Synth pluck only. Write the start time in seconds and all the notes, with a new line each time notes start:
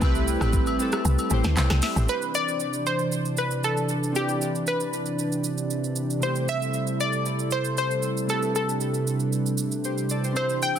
2.09 B4
2.35 D5
2.87 C5
3.38 B4
3.64 A4
4.16 G4
4.68 B4
6.23 C5
6.49 E5
7.00 D5
7.52 C5
7.78 C5
8.30 A4
8.56 A4
10.37 C5
10.63 G5